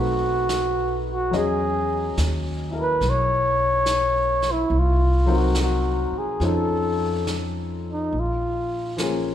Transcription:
Already playing: upright bass B1, upright piano A3 C4 D#4 B4, flugelhorn F#4
0.49 snare, hi-hat pedal
1.11 flugelhorn F#4
1.31 upright bass E2, upright piano F#3 C#4 D#5, brush sweep, snare
1.36 upright piano G#4, flugelhorn G#4
2.17 upright bass D#2, snare, hi-hat pedal
2.71 upright piano E4 A#4
2.81 flugelhorn B4
3.01 upright bass B1, brush sweep, snare
3.10 flugelhorn C#5
3.86 snare, hi-hat pedal
4.42 snare
4.52 flugelhorn E4
4.70 upright bass C2, brush sweep
4.79 flugelhorn F4
5.26 upright piano F#3 C4 D#4 A#4
5.37 flugelhorn F#4
5.55 snare, hi-hat pedal
5.62 flugelhorn F#4
6.12 muted upright bass stroke
6.18 flugelhorn G#4
6.40 upright bass F2, upright piano F3 C#4 D#4, brush sweep, snare
6.45 upright piano A4, flugelhorn A4
7.27 snare, hi-hat pedal
7.92 flugelhorn D#4
8.13 upright bass A#1, brush sweep
8.20 flugelhorn F4
8.97 upright piano F3 A#3 C#4, snare, hi-hat pedal
9.01 upright piano G#4

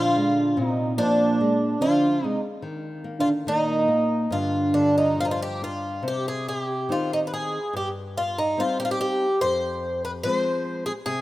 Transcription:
Already playing: nylon-string guitar A#2 F3, soft synth lead D4, twelve-string acoustic guitar F4
0.16 nylon-string guitar G#3
0.57 nylon-string guitar A#2
0.63 soft synth lead C4
0.67 twelve-string acoustic guitar D#4
0.97 nylon-string guitar F3, soft synth lead A#3, twelve-string acoustic guitar D4
1.41 nylon-string guitar G#3
1.80 nylon-string guitar F3, soft synth lead D4, twelve-string acoustic guitar F4
2.24 nylon-string guitar G#3, soft synth lead C4, twelve-string acoustic guitar D#4
2.62 nylon-string guitar D#3
3.04 nylon-string guitar A#3
3.19 soft synth lead D4, twelve-string acoustic guitar F4
3.47 nylon-string guitar D#3, soft synth lead A#3, twelve-string acoustic guitar D#4
3.88 nylon-string guitar A#3
4.31 nylon-string guitar G2, soft synth lead D4, twelve-string acoustic guitar F4
4.74 nylon-string guitar D3, twelve-string acoustic guitar D4
4.98 twelve-string acoustic guitar D#4
5.19 nylon-string guitar F3, twelve-string acoustic guitar F4
5.25 twelve-string acoustic guitar D#4
5.31 twelve-string acoustic guitar F4
5.42 twelve-string acoustic guitar G4
5.62 nylon-string guitar D4, twelve-string acoustic guitar F4
6.03 nylon-string guitar C3
6.08 twelve-string acoustic guitar G4
6.28 twelve-string acoustic guitar G#4
6.49 twelve-string acoustic guitar G#4
6.60 twelve-string acoustic guitar G4
6.89 nylon-string guitar D#3 C4 D#4, twelve-string acoustic guitar F4
7.13 twelve-string acoustic guitar D#4
7.27 twelve-string acoustic guitar B4
7.34 twelve-string acoustic guitar G#4
7.73 nylon-string guitar G2, twelve-string acoustic guitar G4
8.17 twelve-string acoustic guitar F4
8.38 twelve-string acoustic guitar D#4
8.57 nylon-string guitar G3 C4 D#4, twelve-string acoustic guitar F4
8.80 twelve-string acoustic guitar G4
8.85 twelve-string acoustic guitar F4
8.91 twelve-string acoustic guitar G4
9.01 twelve-string acoustic guitar G4
9.41 nylon-string guitar F2, twelve-string acoustic guitar C5
10.05 twelve-string acoustic guitar B4
10.23 nylon-string guitar F3 G#3 C4, twelve-string acoustic guitar B4
10.34 twelve-string acoustic guitar C5
10.86 twelve-string acoustic guitar G#4
11.06 nylon-string guitar C3, twelve-string acoustic guitar G#4

